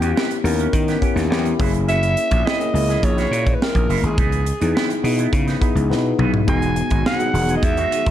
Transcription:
Already playing: alto saxophone G4
0.01 slap bass E2, tine electric piano B3 C#4 E4 G4, clean electric guitar B3 C#4 G4, closed hi-hat
0.16 clean electric guitar B3 C#4 A#4, snare
0.30 muted clean electric guitar stroke, closed hi-hat
0.44 slap bass D#2, tine electric piano B3 C#4 E4 A#4, muted clean electric guitar stroke, open hi-hat
0.59 clean electric guitar B3 C#4 A#4, closed hi-hat
0.73 slap bass D#3, muted clean electric guitar stroke, kick, closed hi-hat
0.88 clean electric guitar B3 C#4 G4, snare, closed hi-hat
1.01 tine electric piano B3 C#4 E4 G4, clean electric guitar B3 C#4 G4, kick, closed hi-hat
1.16 slap bass D#2, muted clean electric guitar stroke, snare, closed hi-hat
1.30 slap bass E2, tine electric piano B3 C#4 E4 G4, snare
1.45 muted clean electric guitar stroke, closed hi-hat
1.59 slap bass F#1, tine electric piano A#3 C#4 E4 G#4, clean electric guitar A#3 E4 F#4, kick, open hi-hat
1.74 muted clean electric guitar stroke, closed hi-hat
1.88 clean electric guitar A#3 E4 F#4, alto saxophone E5, closed hi-hat
2.03 closed hi-hat
2.17 closed hi-hat
2.31 slap bass A#1, clean electric guitar A#3 E4 F#4, kick, closed hi-hat
2.45 clean electric guitar A#3 E4 G#4, alto saxophone D#5, snare
2.60 tine electric piano A#3 C#4 E4 G#4, muted clean electric guitar stroke, closed hi-hat
2.74 slap bass C#2, tine electric piano A#3 C#4 E4 G#4, muted clean electric guitar stroke, open hi-hat
2.89 clean electric guitar A#3 E4 G#4, snare, closed hi-hat
3.03 slap bass A#1, alto saxophone C#5, muted clean electric guitar stroke, kick, closed hi-hat
3.17 clean electric guitar A#3 E4 F#4, snare, closed hi-hat
3.31 slap bass A#2, clean electric guitar A#3 E4 F#4, closed hi-hat
3.46 muted clean electric guitar stroke, kick, closed hi-hat
3.54 alto saxophone B4
3.62 alto saxophone A#4, snare
3.75 slap bass A#1, muted clean electric guitar stroke, kick, closed hi-hat
3.89 slap bass F#1, clean electric guitar A#3 E4 F#4, open hi-hat
4.03 slap bass G#1, alto saxophone G#4, muted clean electric guitar stroke, closed hi-hat
4.18 slap bass C#2, clean electric guitar E3 B3 D#4, kick, closed hi-hat
4.32 closed hi-hat
4.46 muted clean electric guitar stroke, closed hi-hat
4.60 slap bass E2, clean electric guitar E3 B3 D#4, tine electric piano B3 D#4 E4 G#4, closed hi-hat
4.74 clean electric guitar E3 B3 E4, snare
4.89 muted clean electric guitar stroke, closed hi-hat
5.03 slap bass B2, tine electric piano B3 D#4 E4 G#4, muted clean electric guitar stroke, open hi-hat
5.18 clean electric guitar E3 B3 E4, closed hi-hat
5.33 slap bass C#3, kick, closed hi-hat
5.47 clean electric guitar E3 B3 D#4, snare, closed hi-hat
5.61 clean electric guitar E3 B3 D#4, tine electric piano B3 D#4 E4 G#4, kick, closed hi-hat
5.75 slap bass C#2, muted clean electric guitar stroke, closed hi-hat
5.89 slap bass B2, tine electric piano B3 D#4 E4 B4, muted clean electric guitar stroke, snare
6.04 muted clean electric guitar stroke
6.18 slap bass B1, clean electric guitar E3 B3 D#4, mid tom
6.33 muted clean electric guitar stroke, floor tom
6.47 slap bass E1, string section B2 F#3 G#3, clean electric guitar G#3 D#4 F#4, tine electric piano B3 D#4 F#4 G#4, alto saxophone G#5, kick, closed hi-hat
6.62 closed hi-hat
6.76 muted clean electric guitar stroke, closed hi-hat
6.90 slap bass G#1, clean electric guitar G#3 D#4 F#4, kick, closed hi-hat
7.05 clean electric guitar G#3 D#4 G#4, alto saxophone F#5, snare
7.19 tine electric piano B3 D#4 F#4 G#4, muted clean electric guitar stroke, closed hi-hat
7.33 slap bass E1, tine electric piano D#3 B3 F#4 G#4, muted clean electric guitar stroke, open hi-hat
7.48 clean electric guitar G#3 D#4 G#4, closed hi-hat
7.57 alto saxophone D#5
7.62 slap bass E2, alto saxophone E5, muted clean electric guitar stroke, kick, closed hi-hat
7.77 clean electric guitar G#3 D#4 F#4, closed hi-hat
7.91 clean electric guitar G#3 D#4 F#4, closed hi-hat
8.06 slap bass E1, muted clean electric guitar stroke, kick, closed hi-hat

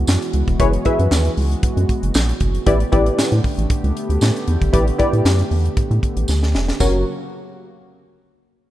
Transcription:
Already playing: analog synth pad E3 G#3 B3 F#4
0.07 analog synth bass F#2, snare, clap, tambourine
0.22 closed hi-hat
0.33 analog synth bass C#2, closed hi-hat
0.48 analog synth bass E1, kick, closed hi-hat
0.59 analog synth bass F#1, analog polysynth E4 G#4 B4 C#5, kick, closed hi-hat
0.73 closed hi-hat
0.85 analog polysynth E4 G#4 B4 E5, kick, closed hi-hat
0.99 analog synth bass F#2, closed hi-hat
1.11 analog synth bass D#2, snare, clap, tambourine
1.25 closed hi-hat
1.37 analog synth bass C#2, open hi-hat
1.52 closed hi-hat
1.63 analog synth bass F#2, kick, closed hi-hat
1.77 analog synth bass F#2, closed hi-hat
1.89 kick, closed hi-hat
2.03 analog synth bass F#1, closed hi-hat
2.14 analog synth bass A#1, snare, clap, tambourine
2.29 closed hi-hat
2.40 analog synth bass F#1, kick, closed hi-hat
2.55 closed hi-hat
2.66 analog synth bass A1, analog synth pad D3 A3 B3 G4, analog polysynth E4 G4 B4 D5, kick, closed hi-hat
2.80 closed hi-hat
2.92 analog synth bass A1, analog polysynth E4 G4 B4 D5, kick, closed hi-hat
3.06 closed hi-hat
3.18 analog synth bass A2, snare, clap, tambourine
3.32 analog synth bass A2, closed hi-hat
3.44 kick, open hi-hat
3.58 analog synth bass A1, closed hi-hat
3.70 kick, closed hi-hat
3.84 analog synth bass C#2, closed hi-hat
3.97 closed hi-hat
4.09 analog synth bass D2, closed hi-hat
4.21 analog synth bass A2, snare, clap, tambourine
4.36 closed hi-hat
4.48 analog synth bass E2, closed hi-hat
4.62 analog synth bass G1, kick, closed hi-hat
4.73 analog synth bass A1, analog polysynth E4 G4 B4 D5, kick, closed hi-hat
4.88 closed hi-hat
4.98 analog polysynth E4 G4 B4 D5, kick, closed hi-hat
5.13 analog synth bass A2, closed hi-hat
5.25 analog synth bass F#2, snare, clap, tambourine
5.39 closed hi-hat
5.51 analog synth bass E2, open hi-hat
5.65 closed hi-hat
5.77 analog synth bass A2, kick, closed hi-hat
5.91 analog synth bass A2, closed hi-hat
6.03 kick, closed hi-hat
6.16 analog synth bass A1, closed hi-hat
6.28 analog synth bass D2, snare, tambourine
6.43 snare
6.54 analog synth bass E1, snare
6.68 snare
6.80 analog synth bass F#1, analog synth pad C#3 F#3 A#3 F#4, analog polysynth C#4 F#4 A#4 C#5, kick, crash, tambourine

